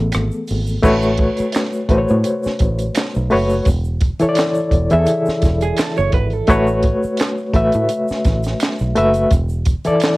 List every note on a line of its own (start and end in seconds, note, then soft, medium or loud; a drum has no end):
0.00 0.11 A1 medium
0.00 0.44 E3 soft
0.00 0.45 A3 medium
0.00 0.45 B3 medium
0.00 0.45 G#4 soft
0.00 0.44 A4 medium
0.12 0.29 G#1 medium
0.12 finger snap medium
0.12 cross-stick loud
0.12 closed hi-hat medium
0.12 shaker medium
0.31 shaker soft
0.48 0.77 G#1 medium
0.48 open hi-hat soft
0.48 shaker soft
0.67 shaker soft
0.83 1.27 A1 loud
0.83 1.78 A3 loud
0.83 1.79 F#4 loud
0.83 1.79 B4 loud
0.83 1.80 C#5 loud
0.83 kick loud
0.83 crash loud
0.83 shaker medium
1.02 shaker medium
1.17 kick medium
1.17 closed hi-hat medium
1.37 muted fingered electric bass stroke soft
1.37 closed hi-hat soft
1.37 shaker soft
1.52 finger snap medium
1.52 snare loud
1.52 closed hi-hat medium
1.52 shaker medium
1.57 clap medium
1.72 shaker medium
1.89 2.05 A1 medium
1.89 3.16 A3 medium
1.89 3.16 F#4 medium
1.89 3.17 B4 medium
1.89 1.97 C5 medium
1.89 kick medium
1.89 closed hi-hat medium
1.98 3.21 C#5 medium
2.08 2.23 A2 loud
2.08 shaker soft
2.24 closed hi-hat medium
2.24 shaker medium
2.43 muted fingered electric bass stroke medium
2.43 snare soft
2.43 shaker medium
2.59 2.89 A1 medium
2.59 kick medium
2.59 closed hi-hat medium
2.59 shaker soft
2.78 closed hi-hat soft
2.78 shaker medium
2.95 finger snap medium
2.95 snare loud
2.95 clap medium
2.95 closed hi-hat medium
2.95 shaker medium
3.14 3.28 B1 medium
3.14 shaker soft
3.30 3.59 F#1 medium
3.30 3.66 A3 medium
3.30 3.66 F#4 medium
3.30 3.66 B4 medium
3.30 3.67 C#5 loud
3.30 open hi-hat soft
3.49 shaker medium
3.65 4.09 E1 loud
3.65 kick loud
3.65 closed hi-hat medium
3.65 shaker medium
3.84 shaker soft
4.00 kick loud
4.00 closed hi-hat medium
4.19 4.82 E3 medium
4.19 4.83 E4 medium
4.19 4.83 A4 medium
4.19 4.27 C#5 medium
4.19 muted fingered electric bass stroke soft
4.19 closed hi-hat soft
4.19 shaker soft
4.29 4.87 D5 loud
4.35 finger snap medium
4.35 snare loud
4.35 closed hi-hat medium
4.35 shaker medium
4.40 clap medium
4.54 shaker medium
4.71 4.87 E1 medium
4.71 kick medium
4.71 closed hi-hat medium
4.90 5.05 E2 loud
4.90 6.16 E3 medium
4.90 6.16 E4 medium
4.90 4.98 G#4 medium
4.90 6.17 E5 medium
4.90 closed hi-hat soft
4.90 shaker soft
4.99 6.20 A4 medium
5.06 closed hi-hat medium
5.06 shaker medium
5.26 muted fingered electric bass stroke soft
5.26 snare soft
5.26 shaker medium
5.42 5.71 E1 medium
5.42 kick medium
5.42 snare soft
5.42 closed hi-hat medium
5.42 shaker soft
5.61 5.79 G#4 medium
5.61 closed hi-hat soft
5.61 shaker medium
5.77 5.96 A4 medium
5.77 finger snap medium
5.77 snare loud
5.77 clap medium
5.77 closed hi-hat medium
5.77 shaker medium
5.97 6.11 F#1 medium
5.97 6.13 C#5 medium
5.97 shaker soft
6.12 6.42 G#1 medium
6.12 6.33 B4 medium
6.12 kick loud
6.12 closed hi-hat medium
6.30 6.66 A4 medium
6.30 closed hi-hat soft
6.30 shaker medium
6.47 6.92 A1 loud
6.47 7.43 A3 loud
6.47 7.44 F#4 loud
6.47 7.44 B4 loud
6.47 7.45 C#5 loud
6.47 kick loud
6.47 closed hi-hat medium
6.47 shaker medium
6.67 shaker soft
6.83 kick medium
6.83 closed hi-hat medium
7.03 muted fingered electric bass stroke soft
7.03 shaker medium
7.17 finger snap medium
7.17 snare loud
7.17 closed hi-hat medium
7.17 shaker medium
7.22 clap medium
7.38 shaker medium
7.54 7.69 A1 medium
7.54 8.81 A3 medium
7.54 8.82 F#4 medium
7.54 8.82 B4 medium
7.54 8.82 E5 medium
7.54 kick medium
7.54 closed hi-hat medium
7.72 7.87 A2 loud
7.72 closed hi-hat soft
7.72 shaker soft
7.89 closed hi-hat medium
7.89 shaker medium
8.08 muted fingered electric bass stroke soft
8.08 snare soft
8.08 shaker medium
8.25 8.54 A1 medium
8.25 kick medium
8.25 snare soft
8.25 closed hi-hat medium
8.25 shaker soft
8.43 snare soft
8.43 closed hi-hat soft
8.43 shaker medium
8.60 finger snap medium
8.60 snare loud
8.60 clap medium
8.60 closed hi-hat medium
8.60 shaker medium
8.79 8.93 B1 medium
8.79 shaker soft
8.95 9.24 F#1 medium
8.95 9.31 A3 loud
8.95 9.31 F#4 medium
8.95 9.32 B4 medium
8.95 9.32 E5 loud
8.95 closed hi-hat medium
9.14 closed hi-hat soft
9.14 shaker soft
9.31 9.74 E1 loud
9.31 kick loud
9.31 closed hi-hat medium
9.31 shaker medium
9.49 shaker medium
9.65 kick medium
9.65 closed hi-hat medium
9.65 shaker medium
9.85 10.17 E3 medium
9.85 10.17 E4 medium
9.85 10.17 A4 medium
9.85 10.17 D5 medium
9.85 muted fingered electric bass stroke soft
9.85 closed hi-hat soft
9.85 shaker medium
10.00 finger snap medium
10.00 snare loud
10.00 closed hi-hat medium
10.00 shaker medium
10.05 clap loud